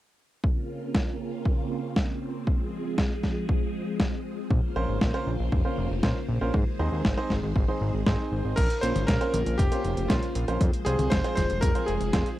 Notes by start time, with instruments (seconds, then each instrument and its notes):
0.44 string machine C#3 A#3 C4 F4, kick
0.95 kick, snare
1.45 kick
1.96 kick, snare
2.47 string machine F3 G#3 G#4, kick
2.98 kick, snare
3.23 kick, snare
3.49 kick
4.00 kick, snare
4.50 analog synth bass A#1, string machine C#3 A#3 F4 C5, kick
4.76 analog synth bass A#1, grand piano C#4 F4 A#4 C5
4.89 analog synth bass G#1
5.01 analog synth bass A#1, kick, snare
5.14 grand piano C#4 F4 A#4 C5
5.27 analog synth bass A#1
5.39 analog synth bass A#1
5.52 analog synth bass F1, kick
5.65 grand piano C#4 F4 A#4 C5
5.78 analog synth bass F1
5.90 analog synth bass F1
6.03 analog synth bass A#1, grand piano C#4 F4 A#4 C5, kick, snare
6.29 analog synth bass A#1
6.41 analog synth bass A#1, grand piano C#4 F4 A#4 C5
6.54 analog synth bass G#2, string machine D#3 G#3 G#4, kick
6.79 analog synth bass D#2, grand piano C4 D#4 G#4 C5
6.92 analog synth bass D#2
7.05 analog synth bass G#1, kick, snare
7.18 grand piano C4 D#4 G#4 C5
7.30 analog synth bass G#1, kick, snare
7.43 analog synth bass G#1
7.56 analog synth bass G#1, kick
7.68 grand piano C4 D#4 G#4 C5
7.81 analog synth bass G#1
7.94 analog synth bass G#1
8.06 analog synth bass G#1, grand piano C4 D#4 G#4 C5, kick, snare
8.32 analog synth bass G#1
8.45 analog synth bass G#1
8.56 analog synth bass A#1, string machine C#3 A#3 F4 C5, electric grand piano A#4, kick, closed hi-hat, crash
8.70 closed hi-hat
8.81 analog synth bass A#1, grand piano C#4 F4 A#4 C5, electric grand piano C5, closed hi-hat
8.96 analog synth bass G#1, closed hi-hat, high tom
9.07 analog synth bass A#1, electric grand piano A#4, kick, snare, closed hi-hat
9.21 grand piano C#4 F4 A#4 C5, closed hi-hat
9.34 analog synth bass A#1, closed hi-hat, high tom
9.46 analog synth bass A#1, closed hi-hat
9.58 analog synth bass F1, electric grand piano G4, kick, closed hi-hat
9.72 grand piano C#4 F4 A#4 C5, closed hi-hat
9.84 analog synth bass F1, closed hi-hat
9.97 analog synth bass F1, closed hi-hat
10.08 analog synth bass A#1, grand piano C#4 F4 A#4 C5, electric grand piano F4, kick, snare, closed hi-hat
10.23 closed hi-hat
10.35 analog synth bass A#1, closed hi-hat
10.48 analog synth bass A#1, grand piano C#4 F4 A#4 C5, closed hi-hat
10.61 analog synth bass F2, string machine F3 G#3 G#4, kick, closed hi-hat
10.73 closed hi-hat
10.85 analog synth bass C2, grand piano C4 F4 G#4 C5, electric grand piano G#4, closed hi-hat
10.99 analog synth bass C2, closed hi-hat, high tom
11.10 analog synth bass F1, electric grand piano C5, kick, snare, closed hi-hat
11.24 grand piano C4 F4 G#4 C5, closed hi-hat
11.36 analog synth bass F1, electric grand piano C5, kick, snare, closed hi-hat, high tom
11.50 analog synth bass F1, closed hi-hat
11.61 analog synth bass F1, electric grand piano A#4, kick, closed hi-hat
11.75 grand piano C4 F4 G#4 C5, closed hi-hat
11.86 analog synth bass F1, electric grand piano G#4, closed hi-hat
12.01 analog synth bass F1, closed hi-hat
12.13 analog synth bass F1, grand piano C4 F4 G#4 C5, kick, snare, closed hi-hat
12.26 closed hi-hat